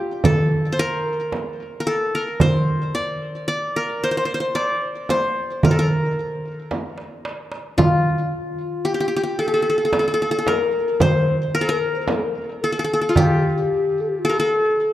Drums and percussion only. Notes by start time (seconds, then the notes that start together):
0.24 frame drum, darbuka dum
1.32 darbuka tek, frame drum
2.40 darbuka dum, frame drum
4.02 darbuka ka
4.56 darbuka tek
5.09 darbuka tek, frame drum
5.63 darbuka dum, frame drum
6.71 darbuka tek, frame drum
6.98 darbuka ka
7.25 darbuka tek
7.52 darbuka ka
7.78 frame drum, darbuka dum
9.40 darbuka ka
9.93 darbuka tek, frame drum
10.47 darbuka tek, frame drum
11.00 frame drum, darbuka dum
12.08 darbuka tek, frame drum
13.16 frame drum, darbuka dum
14.77 darbuka ka